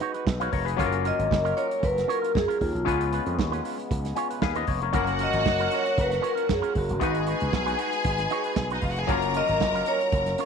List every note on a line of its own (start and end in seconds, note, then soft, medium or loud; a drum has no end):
0.00 0.74 G#3 medium
0.00 0.77 G#3 medium
0.00 0.74 B3 medium
0.00 0.75 D#4 medium
0.00 0.77 D#4 medium
0.00 0.15 D#4 medium
0.00 0.75 F#4 medium
0.00 0.77 F#4 medium
0.00 0.14 F#4 medium
0.00 0.24 B4 medium
0.00 0.77 B4 medium
0.00 0.14 C#5 medium
0.00 closed hi-hat medium
0.14 0.25 D#4 medium
0.14 0.26 F#4 medium
0.14 0.27 B4 medium
0.14 closed hi-hat medium
0.27 0.48 B1 loud
0.27 muted clean electric guitar stroke medium
0.27 kick loud
0.27 snare loud
0.40 0.50 D#4 medium
0.40 0.51 F#4 medium
0.40 0.52 B4 medium
0.40 0.51 C#5 medium
0.40 0.52 F5 medium
0.40 closed hi-hat medium
0.52 0.74 F1 loud
0.52 0.66 A#4 medium
0.52 0.66 C#5 medium
0.52 kick loud
0.52 open hi-hat medium
0.65 0.91 G#4 medium
0.65 0.90 B4 medium
0.65 muted clean electric guitar stroke soft
0.65 closed hi-hat medium
0.77 1.11 F#1 loud
0.77 2.81 F#3 medium
0.77 2.85 F#3 medium
0.77 2.82 A#3 medium
0.77 2.82 C#4 medium
0.77 0.97 C#4 medium
0.77 2.85 C#4 medium
0.77 2.83 F4 medium
0.77 0.97 F4 medium
0.77 0.86 A4 medium
0.77 2.85 A#4 medium
0.77 0.98 A#4 medium
0.77 kick loud
0.77 closed hi-hat medium
0.86 2.86 A#4 medium
0.92 closed hi-hat medium
1.04 1.18 C#4 medium
1.04 1.17 F4 medium
1.04 1.16 A#4 medium
1.04 1.60 D#5 loud
1.04 closed hi-hat medium
1.18 1.28 G#1 medium
1.18 1.29 C#4 medium
1.18 1.30 F4 medium
1.18 1.31 A#4 medium
1.18 closed hi-hat soft
1.31 1.52 F#1 loud
1.31 muted clean electric guitar stroke soft
1.31 kick loud
1.31 snare loud
1.45 1.55 C#4 medium
1.45 1.55 F4 medium
1.45 1.56 A#4 loud
1.45 closed hi-hat soft
1.56 1.71 C#4 medium
1.56 1.70 F4 medium
1.56 1.68 A#4 medium
1.56 1.84 C#5 loud
1.56 closed hi-hat medium
1.70 muted clean electric guitar stroke medium
1.70 closed hi-hat medium
1.81 2.03 F#1 loud
1.81 2.08 B4 loud
1.81 muted clean electric guitar stroke soft
1.81 kick loud
1.81 closed hi-hat medium
1.95 muted clean electric guitar stroke soft
1.95 snare soft
1.95 closed hi-hat medium
2.08 2.22 C#4 medium
2.08 2.21 F4 medium
2.08 2.36 A#4 medium
2.08 2.21 C#5 loud
2.08 closed hi-hat medium
2.22 2.32 C#4 medium
2.22 2.33 F4 medium
2.22 2.34 A#4 medium
2.22 closed hi-hat soft
2.34 2.46 F#2 loud
2.34 2.62 G#4 medium
2.34 muted clean electric guitar stroke soft
2.34 kick loud
2.34 snare loud
2.48 2.58 C#4 medium
2.48 2.59 F4 medium
2.48 2.59 A#4 medium
2.48 closed hi-hat medium
2.59 2.72 D#2 medium
2.59 3.09 F4 medium
2.59 muted clean electric guitar stroke soft
2.59 kick medium
2.59 open hi-hat medium
2.73 2.84 B1 loud
2.73 muted clean electric guitar stroke medium
2.73 closed hi-hat soft
2.85 3.19 C#2 loud
2.85 4.92 C#3 medium
2.85 4.38 G#3 medium
2.85 4.92 G#3 medium
2.85 4.39 B3 medium
2.85 4.92 B3 medium
2.85 3.04 C#4 medium
2.85 4.39 C#4 medium
2.85 4.39 F4 medium
2.85 3.05 F4 medium
2.85 3.05 B4 medium
2.85 4.40 B4 medium
2.85 kick loud
2.85 closed hi-hat medium
3.01 closed hi-hat medium
3.12 3.27 C#4 medium
3.12 3.26 F4 medium
3.12 3.25 B4 medium
3.12 closed hi-hat medium
3.26 3.39 F2 medium
3.26 3.36 C#4 medium
3.26 3.38 F4 medium
3.26 3.38 B4 medium
3.26 closed hi-hat soft
3.39 3.59 D#2 medium
3.39 kick loud
3.39 snare loud
3.52 3.63 C#4 medium
3.52 3.64 F4 medium
3.52 3.64 B4 medium
3.52 closed hi-hat soft
3.64 3.79 C#4 medium
3.64 3.78 F4 medium
3.64 3.76 B4 medium
3.64 open hi-hat medium
3.78 muted clean electric guitar stroke medium
3.78 closed hi-hat soft
3.90 4.11 C#2 loud
3.90 muted clean electric guitar stroke soft
3.90 kick loud
3.90 closed hi-hat medium
4.05 muted clean electric guitar stroke soft
4.05 snare soft
4.05 closed hi-hat medium
4.16 4.31 C#4 medium
4.16 4.30 F4 medium
4.16 4.30 C#5 loud
4.16 4.40 G#5 medium
4.16 closed hi-hat medium
4.30 4.41 C#4 medium
4.30 4.41 F4 medium
4.30 4.42 B4 medium
4.30 closed hi-hat medium
4.42 4.63 D#2 medium
4.42 4.55 G#4 medium
4.42 4.55 B4 medium
4.42 4.66 F5 medium
4.42 kick loud
4.42 snare loud
4.55 4.66 C#4 medium
4.55 4.67 F4 medium
4.55 4.67 B4 medium
4.55 4.81 B4 medium
4.55 4.81 D#5 medium
4.55 closed hi-hat medium
4.67 4.89 F1 medium
4.67 4.81 C#5 medium
4.67 kick loud
4.67 open hi-hat medium
4.81 4.95 A#4 medium
4.81 5.07 C#5 medium
4.81 muted clean electric guitar stroke medium
4.81 closed hi-hat medium
4.92 5.26 F#1 loud
4.92 6.97 F#3 medium
4.92 7.00 F#3 medium
4.92 6.97 A#3 medium
4.92 5.11 C#4 medium
4.92 6.98 C#4 medium
4.92 7.00 C#4 medium
4.92 5.12 F4 medium
4.92 6.98 F#4 medium
4.92 6.72 F#4 loud
4.92 5.12 A#4 loud
4.92 7.00 A#4 loud
4.92 6.98 A#4 medium
4.92 6.72 F#5 loud
4.92 kick loud
4.92 closed hi-hat medium
5.07 closed hi-hat medium
5.19 5.33 C#4 medium
5.19 5.33 F4 medium
5.19 5.32 A#4 medium
5.19 closed hi-hat medium
5.23 5.75 D#5 loud
5.33 5.46 G#1 medium
5.33 5.45 C#4 medium
5.33 5.45 F4 medium
5.33 5.46 A#4 medium
5.33 closed hi-hat soft
5.46 5.67 F#1 loud
5.46 kick loud
5.46 snare loud
5.60 5.71 C#4 medium
5.60 5.72 F4 medium
5.60 5.73 A#4 loud
5.60 closed hi-hat soft
5.71 5.87 C#4 medium
5.71 5.87 F4 medium
5.71 5.86 A#4 medium
5.71 6.00 C#5 loud
5.71 closed hi-hat medium
5.86 muted clean electric guitar stroke soft
5.86 closed hi-hat soft
5.98 6.18 F#1 loud
5.98 6.26 B4 loud
5.98 muted clean electric guitar stroke soft
5.98 kick loud
5.98 closed hi-hat medium
6.11 muted clean electric guitar stroke soft
6.11 snare soft
6.11 closed hi-hat soft
6.22 6.35 C#4 medium
6.22 6.35 F4 medium
6.22 6.35 C#5 loud
6.22 closed hi-hat medium
6.27 6.50 A#4 medium
6.35 6.47 C#4 medium
6.35 6.48 F4 medium
6.35 6.49 A#4 medium
6.35 closed hi-hat medium
6.49 6.60 F#2 medium
6.49 6.78 G#4 medium
6.49 kick loud
6.49 snare loud
6.62 6.74 C#4 medium
6.62 6.75 F4 medium
6.62 6.75 A#4 medium
6.62 closed hi-hat medium
6.75 6.87 F#1 loud
6.75 7.25 F#4 medium
6.75 muted clean electric guitar stroke soft
6.75 kick medium
6.75 open hi-hat medium
6.89 7.01 F#1 loud
6.89 muted clean electric guitar stroke medium
6.89 closed hi-hat medium
7.00 7.33 G#1 loud
7.00 9.04 G#3 medium
7.00 9.07 G#3 medium
7.00 9.04 B3 medium
7.00 9.07 D#4 medium
7.00 7.20 D#4 medium
7.00 9.05 D#4 medium
7.00 9.07 F#4 medium
7.00 9.05 F#4 medium
7.00 7.20 F#4 medium
7.00 8.66 G#4 loud
7.00 9.07 B4 medium
7.00 9.06 B4 medium
7.00 7.21 B4 medium
7.00 8.67 G#5 loud
7.00 kick loud
7.00 closed hi-hat medium
7.15 closed hi-hat medium
7.27 7.41 D#4 medium
7.27 7.40 F#4 medium
7.27 7.39 B4 medium
7.27 closed hi-hat medium
7.40 7.51 C#2 medium
7.40 7.51 D#4 medium
7.40 7.52 F#4 medium
7.40 7.53 B4 medium
7.40 closed hi-hat soft
7.53 7.74 B1 medium
7.53 kick loud
7.53 snare loud
7.66 7.77 D#4 medium
7.66 7.78 F#4 medium
7.66 7.79 B4 medium
7.66 closed hi-hat soft
7.78 7.93 D#4 medium
7.78 7.92 F#4 medium
7.78 7.91 B4 medium
7.78 closed hi-hat medium
7.92 muted clean electric guitar stroke medium
7.92 closed hi-hat soft
8.04 8.26 G#1 loud
8.04 muted clean electric guitar stroke soft
8.04 kick loud
8.04 closed hi-hat medium
8.18 muted clean electric guitar stroke soft
8.18 snare soft
8.18 closed hi-hat medium
8.30 8.46 D#4 medium
8.30 8.45 F#4 loud
8.30 8.45 C#5 loud
8.30 closed hi-hat medium
8.44 8.56 D#4 medium
8.44 8.57 F#4 medium
8.44 8.57 B4 medium
8.44 closed hi-hat soft
8.56 8.77 B1 medium
8.56 kick loud
8.56 snare loud
8.70 8.81 D#4 medium
8.70 8.83 D#4 medium
8.70 8.82 F#4 medium
8.70 8.83 B4 medium
8.70 8.83 D#5 medium
8.70 closed hi-hat medium
8.81 9.03 F1 loud
8.81 8.92 F4 medium
8.81 8.92 F5 medium
8.81 muted clean electric guitar stroke soft
8.81 kick medium
8.81 open hi-hat medium
8.91 9.00 F#4 medium
8.91 9.00 F#5 loud
8.96 9.09 G#4 medium
8.96 9.09 G#5 loud
8.96 muted clean electric guitar stroke medium
8.96 closed hi-hat medium
9.07 9.40 F#1 loud
9.07 10.45 F#3 medium
9.07 10.45 A#3 medium
9.07 10.45 C#4 medium
9.07 9.27 C#4 medium
9.07 10.45 C#4 medium
9.07 10.45 F4 medium
9.07 9.28 F4 medium
9.07 10.45 A#4 loud
9.07 10.45 A#4 medium
9.07 9.28 A#4 medium
9.07 10.45 A#5 loud
9.07 kick loud
9.07 closed hi-hat medium
9.22 closed hi-hat soft
9.34 9.49 C#4 medium
9.34 9.49 F4 medium
9.34 9.48 A#4 medium
9.34 9.89 D#5 loud
9.34 closed hi-hat medium
9.48 9.59 G#1 medium
9.48 9.60 C#4 medium
9.48 9.61 F4 medium
9.48 closed hi-hat soft
9.60 9.81 F#1 loud
9.60 muted clean electric guitar stroke soft
9.60 kick loud
9.60 snare loud
9.74 9.86 C#4 medium
9.74 9.87 F4 medium
9.74 9.87 A#4 medium
9.74 closed hi-hat soft
9.86 10.01 C#4 medium
9.86 10.01 F4 medium
9.86 10.00 A#4 medium
9.86 10.36 C#5 loud
9.86 closed hi-hat medium
10.01 muted clean electric guitar stroke medium
10.01 closed hi-hat soft
10.12 10.33 F#1 loud
10.12 muted clean electric guitar stroke soft
10.12 kick loud
10.12 closed hi-hat medium
10.26 muted clean electric guitar stroke soft
10.26 snare soft
10.26 closed hi-hat medium
10.38 10.45 C#4 medium
10.38 10.45 F4 medium
10.38 10.45 C#5 loud
10.38 closed hi-hat medium